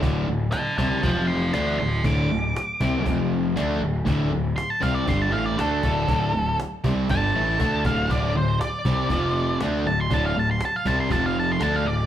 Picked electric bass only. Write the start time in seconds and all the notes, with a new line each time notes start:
0.03 D1
0.28 D1
0.78 C2
1.04 F1
1.54 D2
1.79 D1
2.05 D1
2.30 D1
2.81 C2
3.06 F1
3.56 D2
3.81 D1
4.07 D1
4.33 D1
4.83 C2
5.08 G1
5.33 A1
5.58 D2
5.83 D1
6.08 D1
6.34 D1
6.84 C2
7.10 G1
7.35 A1
7.60 D2
7.85 D1
8.10 D1
8.36 D1
8.85 C2
9.10 F1
9.61 D2
9.86 D1
10.11 D1
10.36 D1
10.86 C2
11.10 F1
11.61 D2
11.85 D1